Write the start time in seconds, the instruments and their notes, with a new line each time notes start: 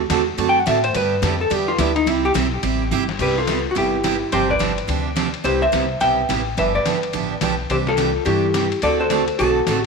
0.10 upright bass E2, steel-string acoustic guitar D3 A3 C4 F#4 A4, snare, hi-hat pedal, ride
0.37 upright bass F#2, steel-string acoustic guitar D3 A3 C4 F#4 A4, ride
0.49 hollow-body jazz guitar G5
0.59 hollow-body jazz guitar F#5
0.66 upright bass A2, steel-string acoustic guitar D3 A3 C4 F#4 A4, hollow-body jazz guitar E5, snare, hi-hat pedal, ride
0.84 hollow-body jazz guitar C5, ride
0.94 upright bass G2, steel-string acoustic guitar D3 G3 B3 D4 G4, hollow-body jazz guitar B4, ride
1.22 upright bass F2, steel-string acoustic guitar D3 G3 B3 D4 G4, snare, hi-hat pedal, ride
1.41 hollow-body jazz guitar A4
1.50 upright bass E2, steel-string acoustic guitar D3 G3 B3 D4 G4, hollow-body jazz guitar G4, ride
1.68 hollow-body jazz guitar F4
1.78 upright bass D2, steel-string acoustic guitar D3 G3 B3 D4 G4, hollow-body jazz guitar E4, snare, hi-hat pedal, ride
1.96 hollow-body jazz guitar D#4, ride
2.06 upright bass C2, steel-string acoustic guitar C3 G3 C4 E4 G4, hollow-body jazz guitar E4, ride
2.25 hollow-body jazz guitar G4
2.34 upright bass B1, steel-string acoustic guitar C3 G3 C4 E4 G4, snare, hi-hat pedal, ride
2.63 upright bass A1, steel-string acoustic guitar C3 G3 C4 E4 G4, ride
2.91 upright bass G1, steel-string acoustic guitar C3 G3 C4 E4 G4, hi-hat pedal
3.09 snare
3.19 upright bass C2, steel-string acoustic guitar C3 G3 B3 E4 G4, hollow-body jazz guitar G4 B4, kick, crash
3.38 hollow-body jazz guitar F4 A4
3.47 steel-string acoustic guitar C3 G3 B3 E4 G4, snare, hi-hat pedal, ride
3.71 steel-string acoustic guitar C3, hollow-body jazz guitar F#4
3.75 upright bass G1, steel-string acoustic guitar G3 B3 E4 G4, hollow-body jazz guitar E4 G4, ride
4.04 steel-string acoustic guitar C3 G3 B3 E4 G4, snare, hi-hat pedal, ride
4.32 upright bass G1, steel-string acoustic guitar C3 F3 C4 D4 G4, hollow-body jazz guitar G4 C5, ride
4.49 hollow-body jazz guitar B4 D5, kick
4.59 steel-string acoustic guitar C3 F3 C4 D4 G4, snare, hi-hat pedal, ride
4.78 ride
4.88 upright bass D2, steel-string acoustic guitar C3 F3 C4 D4 G4, ride
5.16 steel-string acoustic guitar C3 F3 C4 D4 G4, snare, hi-hat pedal, ride
5.34 ride
5.44 upright bass C2, steel-string acoustic guitar C3 G3 B3 E4 G4, hollow-body jazz guitar G4 C5, ride
5.62 hollow-body jazz guitar C5 E5
5.72 upright bass C2, steel-string acoustic guitar C3 G3 B3 E4 G4, snare, hi-hat pedal, ride
6.00 upright bass B1, steel-string acoustic guitar C3 G3 B3 E4 G4, hollow-body jazz guitar E5 G5, ride
6.29 upright bass A1, steel-string acoustic guitar C3 G3 B3 E4 G4, snare, hi-hat pedal, ride
6.57 upright bass G1, steel-string acoustic guitar D3 F3 B3 D4 G4, hollow-body jazz guitar B4 E5, ride
6.75 hollow-body jazz guitar B4 D5
6.86 upright bass G1, steel-string acoustic guitar D3 F3 B3 D4 G4, snare, hi-hat pedal, ride
7.03 ride
7.13 upright bass A1, steel-string acoustic guitar D3 F3 B3 D4 G4, ride
7.41 upright bass B1, steel-string acoustic guitar D3 F3 B3 D4 G4, snare, hi-hat pedal, ride
7.70 upright bass C2, steel-string acoustic guitar C3 E3 D4 G4, hollow-body jazz guitar G4 C5, ride
7.87 hollow-body jazz guitar F4 A4, snare
7.97 steel-string acoustic guitar C3 E3 D4 G4, snare, hi-hat pedal, ride
8.25 upright bass G2, steel-string acoustic guitar C3 E3 D4 G4, hollow-body jazz guitar E4 G4, ride
8.54 steel-string acoustic guitar C3 E3 D4 G4, snare, hi-hat pedal, ride
8.72 ride
8.82 upright bass D2, steel-string acoustic guitar D3 A3 C4 F#4 A4, hollow-body jazz guitar A4 D5, ride
9.00 hollow-body jazz guitar A4 C5
9.10 steel-string acoustic guitar D3 A3 C4 F#4 A4, snare, hi-hat pedal, ride
9.28 ride
9.39 upright bass B1, steel-string acoustic guitar D3 A3 C4 F#4 A4, hollow-body jazz guitar F#4 A4, ride
9.67 upright bass A1, steel-string acoustic guitar D3 A3 C4 F#4 A4, snare, hi-hat pedal, ride
9.80 hollow-body jazz guitar G4